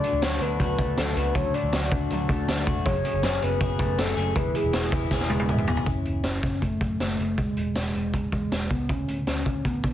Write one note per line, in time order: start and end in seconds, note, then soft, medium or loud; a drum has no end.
0.00 1.34 D3 medium
0.00 0.79 A3 medium
0.00 0.22 F#4 medium
0.00 0.24 D5 loud
0.00 closed hi-hat loud
0.04 0.22 A3 soft
0.04 0.23 D4 soft
0.13 0.21 D2 loud
0.22 0.38 D2 loud
0.22 0.41 F#3 medium
0.22 0.42 A3 medium
0.22 0.42 D4 medium
0.22 0.60 F#4 medium
0.22 0.43 C#5 loud
0.22 snare loud
0.22 closed hi-hat medium
0.41 0.56 D2 medium
0.41 0.60 A3 soft
0.41 0.60 D4 medium
0.41 0.60 F#4 medium
0.41 1.00 B4 loud
0.41 closed hi-hat medium
0.60 0.75 D2 loud
0.60 0.79 D3 medium
0.60 0.79 F#3 medium
0.60 0.80 A3 medium
0.60 0.80 D4 medium
0.60 0.78 F#4 medium
0.60 kick medium
0.60 closed hi-hat medium
0.79 0.94 D2 loud
0.79 0.98 A3 soft
0.79 0.98 D4 medium
0.79 0.98 F#4 medium
0.79 kick loud
0.79 closed hi-hat medium
0.97 1.13 D2 loud
0.97 1.16 F#3 medium
0.97 1.17 A3 medium
0.97 1.17 D4 medium
0.97 1.16 F#4 medium
0.97 1.18 A4 medium
0.97 snare loud
0.97 closed hi-hat loud
1.16 1.32 C#2 loud
1.16 1.36 A3 soft
1.16 1.36 D4 soft
1.16 1.35 F#4 medium
1.16 1.36 B4 loud
1.16 closed hi-hat medium
1.35 1.51 D2 loud
1.35 1.54 D3 medium
1.35 1.54 F#3 medium
1.35 1.55 A3 medium
1.35 1.55 D4 medium
1.35 1.53 F#4 loud
1.35 1.56 C#5 loud
1.35 kick loud
1.35 closed hi-hat medium
1.54 1.73 A3 soft
1.54 1.73 D4 soft
1.54 1.73 F#4 medium
1.54 1.92 D5 loud
1.54 closed hi-hat medium
1.63 1.71 D2 loud
1.72 1.88 D2 loud
1.72 1.92 F#3 medium
1.72 1.92 A3 medium
1.72 1.92 D4 medium
1.72 1.91 F#4 medium
1.72 snare loud
1.72 closed hi-hat medium
1.92 2.07 D2 loud
1.92 2.11 A3 medium
1.92 2.11 D4 soft
1.92 2.11 F#4 medium
1.92 kick loud
1.92 closed hi-hat medium
2.10 2.26 D2 medium
2.10 2.30 D3 medium
2.10 2.30 F#3 loud
2.10 2.30 A3 loud
2.10 2.30 D4 loud
2.10 2.28 F#4 loud
2.10 closed hi-hat medium
2.29 2.44 D2 loud
2.29 2.48 A3 medium
2.29 2.49 D4 medium
2.29 2.48 F#4 medium
2.29 kick loud
2.29 closed hi-hat medium
2.48 2.63 D2 loud
2.48 2.67 F#3 medium
2.48 2.67 A3 medium
2.48 2.68 D4 medium
2.48 2.66 F#4 medium
2.48 snare loud
2.48 closed hi-hat loud
2.67 2.82 E1 medium
2.67 2.85 A3 medium
2.67 2.86 D4 medium
2.67 2.86 F#4 medium
2.67 kick medium
2.67 closed hi-hat medium
2.85 3.01 F#1 loud
2.85 3.04 F#2 medium
2.85 3.05 C#3 medium
2.85 3.05 F#3 medium
2.85 3.05 A3 medium
2.85 3.04 C#4 loud
2.85 3.03 G#4 medium
2.85 3.45 C#5 loud
2.85 kick loud
2.85 closed hi-hat medium
3.04 3.21 F#3 soft
3.04 3.22 A3 soft
3.04 3.23 C#4 soft
3.04 3.23 G#4 medium
3.04 closed hi-hat loud
3.14 3.21 F#1 medium
3.22 3.39 F#1 loud
3.22 3.41 F#3 medium
3.22 3.42 A3 medium
3.22 3.41 C#4 medium
3.22 3.40 G#4 medium
3.22 snare loud
3.22 closed hi-hat medium
3.41 3.57 F#1 medium
3.41 3.59 F#3 soft
3.41 3.60 A3 soft
3.41 3.60 C#4 soft
3.41 3.60 G#4 medium
3.41 4.01 B4 loud
3.41 closed hi-hat medium
3.60 3.76 F#1 loud
3.60 3.79 F#2 medium
3.60 3.79 C#3 medium
3.60 3.79 F#3 medium
3.60 3.80 A3 loud
3.60 3.79 C#4 medium
3.60 3.78 G#4 medium
3.60 kick medium
3.60 closed hi-hat medium
3.79 3.95 F#1 loud
3.79 3.97 F#3 soft
3.79 3.98 A3 soft
3.79 3.98 C#4 medium
3.79 3.98 G#4 medium
3.79 kick loud
3.79 closed hi-hat medium
3.98 4.14 F#1 loud
3.98 4.17 F#3 medium
3.98 4.17 A3 medium
3.98 4.08 B3 medium
3.98 4.16 C#4 medium
3.98 4.15 G#4 medium
3.98 4.38 A4 medium
3.98 snare loud
3.98 closed hi-hat loud
4.08 4.40 C#4 medium
4.16 4.32 F#1 medium
4.16 4.35 F#3 soft
4.16 4.36 A3 soft
4.16 4.36 C#4 medium
4.16 4.35 G#4 medium
4.16 closed hi-hat medium
4.36 4.51 E1 loud
4.36 4.54 E3 medium
4.36 4.55 G#3 medium
4.36 4.55 B3 medium
4.36 4.54 E4 medium
4.36 4.53 G#4 medium
4.36 4.58 B4 loud
4.36 kick loud
4.36 closed hi-hat medium
4.54 4.72 B3 soft
4.54 4.73 E4 medium
4.54 4.73 G#4 medium
4.54 4.93 G#4 medium
4.54 closed hi-hat medium
4.64 4.72 E1 loud
4.72 4.92 G#3 medium
4.72 4.92 B3 medium
4.72 4.92 E4 medium
4.72 4.83 F#4 medium
4.72 4.90 G#4 medium
4.72 snare loud
4.72 closed hi-hat medium
4.83 5.10 G#4 medium
4.91 5.08 E1 loud
4.91 5.10 B3 soft
4.91 5.11 E4 medium
4.91 5.11 G#4 medium
4.91 kick loud
4.91 snare soft
4.91 closed hi-hat medium
5.10 5.26 E1 loud
5.10 5.30 E3 medium
5.10 5.30 G#3 medium
5.10 5.30 B3 medium
5.10 5.30 E4 loud
5.10 5.29 G#4 loud
5.10 kick medium
5.10 snare medium
5.20 snare medium
5.29 5.45 E1 medium
5.29 5.69 G#3 medium
5.29 5.48 B3 medium
5.29 5.49 E4 medium
5.29 5.49 G#4 medium
5.29 high tom medium
5.40 high tom medium
5.48 5.64 E1 loud
5.48 5.67 G#3 medium
5.48 5.68 B3 medium
5.48 5.67 E4 medium
5.48 5.66 G#4 medium
5.48 mid tom medium
5.58 mid tom medium
5.67 5.83 E1 medium
5.67 5.87 B3 loud
5.67 5.87 E4 medium
5.67 5.86 G#4 medium
5.67 floor tom loud
5.77 floor tom medium
5.86 6.02 F#1 medium
5.86 6.24 C#4 loud
5.86 kick medium
5.86 closed hi-hat medium
6.05 6.21 F#1 medium
6.05 closed hi-hat medium
6.23 6.40 F#1 medium
6.23 6.63 C#4 medium
6.23 snare medium
6.23 closed hi-hat medium
6.43 6.59 F#1 medium
6.43 kick medium
6.43 snare soft
6.43 closed hi-hat medium
6.62 6.78 F#1 medium
6.62 6.99 A3 medium
6.62 kick medium
6.62 closed hi-hat medium
6.81 6.97 F#2 medium
6.81 kick medium
6.81 closed hi-hat medium
7.00 7.16 F#1 medium
7.00 7.39 A3 medium
7.00 snare medium
7.00 closed hi-hat medium
7.19 7.38 F#1 medium
7.19 closed hi-hat medium
7.38 7.53 E1 medium
7.38 7.75 G#3 medium
7.38 kick medium
7.38 closed hi-hat medium
7.57 7.72 E1 medium
7.57 closed hi-hat medium
7.75 7.91 E1 medium
7.75 8.29 G#3 medium
7.75 snare medium
7.75 closed hi-hat medium
7.95 8.10 E1 medium
7.95 closed hi-hat medium
8.14 8.29 E1 medium
8.14 kick medium
8.14 closed hi-hat medium
8.32 8.48 E2 medium
8.32 8.67 G#3 medium
8.32 kick medium
8.32 closed hi-hat medium
8.52 8.67 E1 medium
8.52 snare loud
8.52 closed hi-hat medium
8.70 8.86 C#2 medium
8.70 8.91 B3 medium
8.70 kick medium
8.70 closed hi-hat medium
8.89 9.05 D2 medium
8.89 9.08 C#4 loud
8.89 kick loud
8.89 closed hi-hat medium
9.08 9.24 D2 medium
9.08 9.17 C#4 medium
9.08 closed hi-hat medium
9.27 9.43 D2 medium
9.27 9.67 C#4 loud
9.27 snare medium
9.27 closed hi-hat medium
9.46 9.62 D2 medium
9.46 kick medium
9.46 closed hi-hat medium
9.65 9.81 D2 medium
9.65 9.83 B3 medium
9.65 kick medium
9.65 closed hi-hat medium
9.83 9.94 D3 medium
9.83 9.94 B3 medium
9.83 kick medium
9.83 closed hi-hat soft